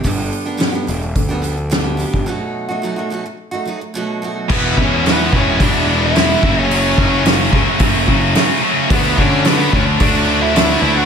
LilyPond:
<<
  \new Staff \with { instrumentName = "Lead electric guitar" } { \time 4/4 \key b \minor \tempo 4 = 109 r1 | r1 | \key e \mixolydian <b b'>8 <cis' cis''>8 <b b'>8 <cis' cis''>8 <d' d''>8. <e' e''>4 <cis' cis''>16 | <cis' cis''>4 r2. |
<b b'>8 <cis' cis''>8 <b b'>8 <cis' cis''>8 <d' d''>8. <e' e''>4 <fis' fis''>16 | }
  \new Staff \with { instrumentName = "Steel-string acoustic guitar" } { \time 4/4 \key b \minor <g, d g b d' g'>8. <g b d' g'>16 <g, d g b d' g'>16 <g b d' g'>16 <g b d' g'>8. <g b d' g'>16 <g b d' g'>8 <g, d g b d' g'>8 <g b d' g'>8 | <b, fis a dis' fis'>8. <a dis' fis'>16 <b, fis a dis' fis'>16 <a dis' fis'>16 <fis a dis' fis'>8. <a dis' fis'>16 <fis a dis' fis'>8 <b, fis a dis' fis'>8 <fis a dis' fis'>8 | \key e \mixolydian r1 | r1 |
r1 | }
  \new Staff \with { instrumentName = "Distorted electric guitar" } { \clef bass \time 4/4 \key b \minor r1 | r1 | \key e \mixolydian <e gis b e'>8 <e gis b e'>8 <e gis b e'>8 <e gis b e'>8 <e gis b e'>8 <e gis b e'>8 <e gis b e'>8 <fis, cis fis a cis'>8 | <fis, cis fis a cis'>8 <fis, cis fis a cis'>8 <fis, cis fis a cis'>8 <fis, cis fis a cis'>8 <fis, cis fis a cis'>8 <fis, cis fis a cis'>8 <fis, cis fis a cis'>8 <fis, cis fis a cis'>8 |
<d fis a d'>8 <d fis a d'>8 <d fis a d'>8 <d fis a d'>8 <d fis a d'>8 <d fis a d'>8 <d fis a d'>8 <d fis a d'>8 | }
  \new Staff \with { instrumentName = "Distorted electric guitar" } { \clef bass \time 4/4 \key b \minor r1 | r1 | \key e \mixolydian <e, b, e>8 <e, b, e>8 <e, b, e>8 <e, b, e>8 <e, b, e>8 <e, b, e>8 <e, b, e>8 <fis, cis fis>8 | <fis, cis fis>8 <fis, cis fis>8 <fis, cis fis>8 <fis, cis fis>8 <fis, cis fis>8 <fis, cis fis>8 <fis, cis fis>8 <fis, cis fis>8 |
<d a d'>8 <d a d'>8 <d a d'>8 <d a d'>8 <d a d'>8 <d a d'>8 <d a d'>8 <d a d'>8 | }
  \new Staff \with { instrumentName = "Picked electric bass" } { \clef bass \time 4/4 \key b \minor g,,8 r4 e,,8 d,4.~ d,16 g,,16 | r1 | \key e \mixolydian e,,8 e,4 e,,8 e,,4. fis,,8~ | fis,,8 fis,,4 cis,16 r16 fis,,8 fis,,8 r4 |
d,8 d4 d,8 d,4. d,8 | }
  \new DrumStaff \with { instrumentName = "Drums" } \drummode { \time 4/4 <hho bd>8 hho8 <hho sn>8 hho8 <hho bd>8 hho8 <hho sn>8 hho16 bd16 | r4 r4 r4 r4 | <cymc bd>8 bd8 <hho sn>8 bd8 <hho bd>4 <hho sn>8 bd8 | hho8 bd8 <hho sn>8 bd8 <hho bd>8 bd8 <hho sn>4 |
<hho bd>8 bd8 <hho sn>8 bd8 <hho bd>4 <hho sn>4 | }
>>